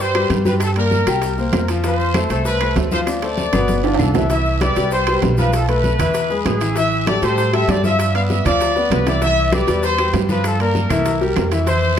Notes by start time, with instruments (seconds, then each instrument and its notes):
Already playing: upright bass G2
0.00 trumpet section C5, high conga, long guiro, maracas
0.14 grand piano G3 G4 B4, high bongo, high conga, high timbale, claves, maracas
0.30 upright bass G2, high bongo, low bongo, high conga, high timbale, short guiro, maracas
0.45 grand piano G3 G4 G5, trumpet section B4, high bongo, high conga, short guiro, maracas
0.60 trumpet section A4, high bongo, high timbale, long guiro, claves, maracas
0.76 grand piano A#3 A#4 D5, trumpet section A#4, high conga, high timbale, maracas
0.91 high bongo, high conga, short guiro, maracas
1.06 upright bass C2, grand piano G3 G4 G5, high bongo, high conga, high timbale, short guiro, claves, maracas
1.22 high bongo, high conga, high timbale, long guiro, maracas
1.37 grand piano A#3 A#4 C5, high bongo, high conga, maracas
1.53 upright bass F2, high bongo, low bongo, high conga, high timbale, low timbale, short guiro, claves, maracas
1.68 grand piano F3 F4 F5, high bongo, high timbale, short guiro, maracas
1.84 grand piano F3 F4 F5, trumpet section C5, high bongo, high conga, high timbale, long guiro, maracas
1.99 high conga, maracas
2.14 grand piano A3 A4 C5, high bongo, high conga, high timbale, short guiro, claves, maracas
2.30 upright bass C2, grand piano A3 A4 C5, trumpet section A4, high bongo, high conga, high timbale, short guiro, maracas
2.45 trumpet section B4, high bongo, high conga, long guiro, maracas
2.61 grand piano A3 A4 C5, high bongo, high conga, high timbale, claves, maracas
2.76 upright bass D2, high bongo, low bongo, high conga, high timbale, low timbale, short guiro, maracas
2.91 grand piano F3 F4 F5, trumpet section C5, high bongo, high conga, short guiro, maracas
3.07 trumpet section D5, high bongo, high conga, high timbale, long guiro, claves, maracas
3.22 grand piano A3 A4 C5, high bongo, high conga, high timbale, maracas
3.37 high bongo, high conga, short guiro, maracas
3.53 upright bass G1, grand piano B2 B3 B4, low bongo, high conga, high timbale, short guiro, claves, maracas
3.68 high conga, high timbale, long guiro, maracas
3.84 grand piano D3 D4 F4, high timbale, maracas
3.94 high timbale
3.99 upright bass C2, trumpet section A4, low bongo, low conga, short guiro, claves, maracas
4.14 grand piano E3 E4 E5, low bongo, low conga, low timbale, short guiro, maracas
4.30 grand piano E3 E4 E5, trumpet section E5, high bongo, high conga, high timbale, long guiro, maracas
4.45 high conga, maracas
4.61 grand piano G3 G4 B4, trumpet section D5, high bongo, high conga, high timbale, short guiro, maracas
4.76 upright bass C2, grand piano G3 G4 B4, high bongo, high conga, high timbale, short guiro, maracas
4.91 trumpet section C5, high bongo, high conga, long guiro, maracas
5.07 grand piano G3 G4 B4, high bongo, high conga, high timbale, maracas
5.22 upright bass B1, high bongo, low bongo, high conga, high timbale, low timbale, short guiro, maracas
5.37 grand piano F3 F4 F5, trumpet section B4, high bongo, high conga, short guiro, maracas
5.53 trumpet section A4, high bongo, high conga, high timbale, long guiro, maracas
5.68 grand piano A3 A4 B4, trumpet section B4, high conga, high timbale, maracas
5.84 high bongo, high conga, short guiro, maracas
5.99 upright bass E2, grand piano E3 E4 E5, high bongo, high conga, low conga, high timbale, short guiro, maracas
6.14 high bongo, high conga, high timbale, long guiro, maracas
6.30 grand piano G#3 G#4 B4, high bongo, high conga, maracas
6.45 upright bass A1, trumpet section G#4, high bongo, low bongo, high conga, high timbale, low timbale, short guiro, maracas
6.61 grand piano E3 E4 E5, high bongo, high conga, high timbale, short guiro, maracas
6.76 grand piano E3 E4 E5, trumpet section E5, high bongo, high conga, high timbale, long guiro, maracas
6.91 high conga, maracas
7.07 grand piano G3 G4 A4, trumpet section D5, high bongo, high conga, high timbale, short guiro, maracas
7.22 upright bass A2, grand piano G3 G4 A4, trumpet section C5, high bongo, high conga, high timbale, short guiro, maracas
7.38 high bongo, high conga, long guiro, maracas
7.53 grand piano G3 G4 A4, trumpet section E5, high bongo, high conga, high timbale, maracas
7.68 upright bass G2, trumpet section D5, high bongo, low bongo, high conga, high timbale, low timbale, short guiro, maracas
7.84 grand piano F3 F4 E5, trumpet section E5, high bongo, high conga, short guiro, maracas
7.99 high bongo, high timbale, long guiro, maracas
8.14 grand piano B3 B4 D5, trumpet section F5, high conga, high timbale, maracas
8.30 trumpet section E5, high bongo, high conga, short guiro, maracas
8.45 upright bass D2, grand piano F3 F4 F5, trumpet section D5, high bongo, high conga, low conga, high timbale, short guiro, maracas
8.60 high bongo, high conga, high timbale, long guiro, maracas
8.76 grand piano B3 B4 D5, high bongo, high conga, maracas
8.90 upright bass C2, trumpet section B4, low bongo, high conga, high timbale, low timbale, short guiro, maracas
9.06 grand piano E3 E4 E5, trumpet section D5, low bongo, high timbale, short guiro, maracas
9.22 grand piano E3 E4 E5, trumpet section E5, high bongo, high conga, high timbale, long guiro, maracas
9.37 high conga, maracas
9.52 grand piano G3 G4 B4, trumpet section D5, high bongo, high conga, high timbale, short guiro, claves, maracas
9.67 upright bass E2, grand piano G3 G4 B4, high conga, high timbale, short guiro, maracas
9.83 trumpet section C5, high bongo, high conga, long guiro, maracas
9.98 grand piano G3 G4 B4, high bongo, high conga, high timbale, claves, maracas
10.13 upright bass G2, high bongo, low bongo, high conga, high timbale, low timbale, short guiro, maracas
10.28 grand piano F3 F4 F5, trumpet section B4, high bongo, high conga, short guiro, maracas
10.44 trumpet section A4, high bongo, high conga, high timbale, long guiro, claves, maracas
10.60 grand piano A#3 A#4 D5, trumpet section A#4, high conga, high timbale, maracas
10.75 high bongo, high conga, short guiro, maracas
10.90 upright bass C2, grand piano E3 E4 E5, high bongo, high conga, low conga, high timbale, short guiro, claves, maracas
11.05 high bongo, high conga, high timbale, long guiro, maracas
11.21 grand piano G3 G4 A#4, high bongo, high conga, maracas
11.36 upright bass F2, high bongo, low bongo, high conga, high timbale, low timbale, short guiro, claves, maracas
11.51 grand piano E3 E4 E5, high bongo, high conga, high timbale, short guiro, maracas
11.67 grand piano E3 E4 E5, trumpet section C5, high bongo, high conga, high timbale, long guiro, maracas
11.82 high conga, maracas